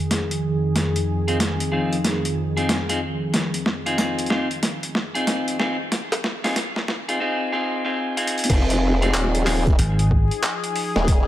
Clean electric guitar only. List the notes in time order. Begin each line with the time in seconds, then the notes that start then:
1.28 C4 D#4 F4 G#4
1.72 C4 D#4 F4 G#4
2.57 C4 D#4 F4 G#4
2.89 C4 D#4 F4 G#4
3.86 C4 D#4 F4 G#4
4.30 C4 D#4 F4 G#4
5.15 C4 D#4 F4 G#4
5.59 C4 D#4 F4 G#4
6.44 C4 D#4 F4 G#4
7.08 C4 D#4 F4 G#4
7.20 C4 D#4 F4 G#4
7.52 C4 D#4 F4 G#4
7.85 C4 D#4 F4 G#4
8.17 C4 D#4 F4 G#4
8.49 C4 D#4 F4 G#4
9.02 C4 D#4 F4 G#4
9.46 C4 D#4 F4 G#4